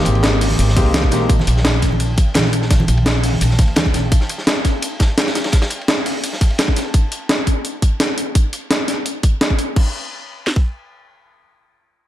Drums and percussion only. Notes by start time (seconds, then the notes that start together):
0.05 closed hi-hat, ride
0.15 ride
0.23 snare, closed hi-hat, ride
0.41 closed hi-hat, open hi-hat
0.50 high conga
0.59 closed hi-hat, ride
0.69 snare
0.77 kick, snare, closed hi-hat, ride
0.86 ride
0.94 snare, closed hi-hat, ride, high conga
1.03 kick, ride
1.11 snare, closed hi-hat, ride
1.29 kick, closed hi-hat, ride
1.39 snare, high conga
1.47 closed hi-hat, ride
1.57 snare
1.65 snare, closed hi-hat, ride
1.74 ride
1.82 kick, snare, closed hi-hat, ride
1.92 high conga
2.00 closed hi-hat, ride
2.17 kick, closed hi-hat, ride
2.34 snare, closed hi-hat, ride, high conga
2.45 snare
2.53 closed hi-hat, ride
2.62 snare
2.71 kick, snare, closed hi-hat, ride
2.80 ride, high conga
2.88 closed hi-hat, ride
2.97 ride
3.06 snare, closed hi-hat, ride
3.24 closed hi-hat, open hi-hat
3.33 high conga
3.41 closed hi-hat, ride
3.51 snare
3.58 kick, snare, closed hi-hat, ride
3.68 ride
3.76 snare, closed hi-hat, ride, high conga
3.86 kick, ride
3.94 snare, closed hi-hat, ride
4.12 kick, closed hi-hat, ride
4.21 snare
4.29 closed hi-hat, ride
4.38 snare
4.47 snare, closed hi-hat, ride
4.57 ride
4.65 kick, snare, closed hi-hat, ride
4.82 closed hi-hat, ride
5.00 kick, snare, closed hi-hat, ride
5.10 ride
5.18 snare, closed hi-hat, ride
5.27 snare, ride
5.35 snare, closed hi-hat, ride
5.44 snare, ride
5.52 kick, snare, closed hi-hat, ride
5.62 snare, ride
5.70 closed hi-hat, ride
5.81 ride
5.88 snare, closed hi-hat, ride
6.06 closed hi-hat, open hi-hat
6.24 closed hi-hat, ride
6.33 snare
6.41 kick, snare, closed hi-hat, ride
6.50 ride
6.58 snare, closed hi-hat, ride
6.68 kick, ride
6.76 snare, closed hi-hat, ride
6.94 kick, closed hi-hat
7.12 closed hi-hat
7.29 snare, closed hi-hat
7.47 kick, closed hi-hat
7.65 closed hi-hat
7.82 kick, closed hi-hat
8.00 snare, closed hi-hat
8.18 closed hi-hat
8.35 kick, closed hi-hat
8.53 closed hi-hat
8.71 snare, closed hi-hat
8.88 snare, closed hi-hat
9.06 closed hi-hat
9.23 kick, closed hi-hat
9.41 snare, closed hi-hat
9.50 kick
9.59 closed hi-hat
9.76 kick, crash
10.47 snare
10.56 kick